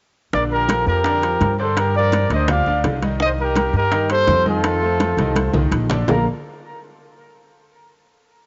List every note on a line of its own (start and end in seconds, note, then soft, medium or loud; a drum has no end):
0.33 0.83 A#1 medium
0.33 0.63 D3 medium
0.33 0.63 D4 medium
0.33 0.42 A#4 medium
0.33 0.63 D5 medium
0.33 0.42 D5 medium
0.33 high bongo medium
0.33 high conga soft
0.52 0.86 G4 medium
0.52 0.85 A#4 medium
0.52 high conga soft
0.69 0.99 F3 medium
0.69 0.99 F4 medium
0.69 0.99 A4 medium
0.69 high bongo medium
0.69 high conga medium
0.69 high timbale loud
0.87 1.37 F2 medium
0.87 1.55 G4 medium
0.87 1.55 A#4 medium
0.87 high bongo soft
0.87 high conga soft
1.04 1.20 D3 medium
1.04 1.20 D4 medium
1.04 1.20 D5 medium
1.04 high bongo medium
1.04 high conga soft
1.04 high timbale medium
1.22 1.52 F3 medium
1.22 1.53 F4 medium
1.22 1.53 A#4 medium
1.22 high bongo soft
1.22 high conga soft
1.22 high timbale medium
1.41 2.25 G2 medium
1.41 high bongo soft
1.41 low bongo medium
1.41 high conga medium
1.41 high timbale medium
1.59 1.88 D3 medium
1.59 1.89 D4 medium
1.59 1.77 A4 medium
1.59 1.77 C5 medium
1.59 1.89 D5 medium
1.59 high bongo soft
1.77 1.96 G4 medium
1.77 1.95 A#4 medium
1.77 high bongo medium
1.77 high conga soft
1.77 high timbale loud
1.95 2.25 F3 medium
1.95 2.25 F4 medium
1.95 2.25 G4 medium
1.95 2.29 A#4 medium
1.95 2.29 D5 loud
1.95 high conga soft
2.12 high bongo medium
2.12 high conga medium
2.12 high timbale medium
2.30 2.64 D2 medium
2.30 2.46 D3 medium
2.30 2.46 D4 medium
2.30 2.49 C5 medium
2.30 2.46 D5 medium
2.30 2.48 D#5 medium
2.30 high bongo soft
2.30 high conga soft
2.30 high timbale medium
2.48 2.64 F3 medium
2.48 2.64 F4 medium
2.48 2.64 G4 medium
2.48 2.83 D5 medium
2.48 2.83 F5 medium
2.48 high bongo medium
2.48 high conga soft
2.48 low conga medium
2.48 high timbale loud
2.66 2.83 D2 medium
2.66 2.96 D3 medium
2.66 2.97 D4 medium
2.66 2.97 D5 medium
2.66 high bongo soft
2.66 high conga soft
2.84 3.68 C2 medium
2.84 high bongo soft
2.84 low bongo medium
2.84 high conga soft
2.84 high timbale medium
2.84 low timbale medium
3.02 3.17 D#3 medium
3.02 3.17 D#4 medium
3.02 3.17 D#5 medium
3.02 high bongo soft
3.02 high conga medium
3.02 high timbale medium
3.20 3.50 D#3 medium
3.20 3.50 D#4 medium
3.20 3.30 C5 medium
3.20 3.50 D#5 medium
3.20 3.29 D#5 loud
3.20 high bongo medium
3.20 high conga soft
3.39 3.73 G4 medium
3.39 3.73 A#4 medium
3.39 high conga soft
3.56 3.86 G3 medium
3.56 3.86 G4 medium
3.56 3.86 A#4 medium
3.56 high bongo medium
3.56 high conga medium
3.56 high timbale medium
3.73 4.24 G2 medium
3.73 4.09 G4 medium
3.73 4.09 A#4 medium
3.73 high bongo soft
3.73 high conga soft
3.92 4.07 D#3 medium
3.92 4.07 D#4 medium
3.92 4.07 D#5 medium
3.92 high bongo medium
3.92 high conga soft
3.92 high timbale medium
4.09 4.39 G3 medium
4.09 4.40 A#3 medium
4.09 4.39 G4 medium
4.09 4.44 A4 medium
4.09 4.44 C5 loud
4.09 high bongo soft
4.09 high conga soft
4.09 high timbale medium
4.27 5.12 F2 loud
4.27 high bongo soft
4.27 low bongo medium
4.27 high conga medium
4.27 high timbale medium
4.46 4.75 D#3 medium
4.46 4.75 D#4 medium
4.46 5.70 F4 medium
4.46 5.69 A4 medium
4.46 4.76 D#5 medium
4.46 high bongo soft
4.46 high conga medium
4.64 high bongo medium
4.64 high conga soft
4.64 high timbale loud
4.82 5.12 A3 medium
4.82 5.12 A4 medium
4.82 5.12 C5 medium
4.82 high conga soft
5.00 high bongo medium
5.00 high conga medium
5.00 high timbale medium
5.17 5.51 C2 medium
5.17 5.33 D#3 medium
5.17 5.33 D#4 medium
5.17 5.33 D#5 medium
5.17 high bongo medium
5.17 high conga medium
5.17 high timbale medium
5.36 5.51 A3 medium
5.36 5.51 A4 medium
5.36 5.51 C5 medium
5.36 high bongo medium
5.36 high conga medium
5.36 high timbale loud
5.53 5.71 C2 medium
5.53 5.84 D#3 medium
5.53 5.84 D#4 medium
5.53 5.84 D#5 medium
5.53 low bongo medium
5.53 low conga loud
5.71 6.04 A#1 loud
5.71 low bongo medium
5.71 high timbale medium
5.90 6.05 D3 medium
5.90 6.05 D4 medium
5.90 6.05 D5 medium
5.90 low bongo medium
5.90 low conga medium
5.90 high timbale medium
6.08 6.25 A#1 loud
6.08 6.25 A#3 medium
6.08 6.26 F4 medium
6.08 6.26 A4 medium
6.08 6.25 A#4 medium
6.08 6.26 A#4 medium
6.08 6.26 D5 medium
6.08 6.26 F5 loud
6.08 low bongo loud
6.08 low conga medium
6.08 low timbale loud